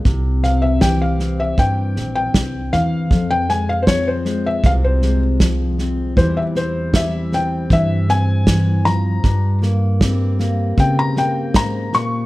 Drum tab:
SD |oooooooo|oooooooo|oooooooo|oooooooo|
BD |o-o-o-o-|o-o-o-o-|o-o-o-o-|o-o-o-o-|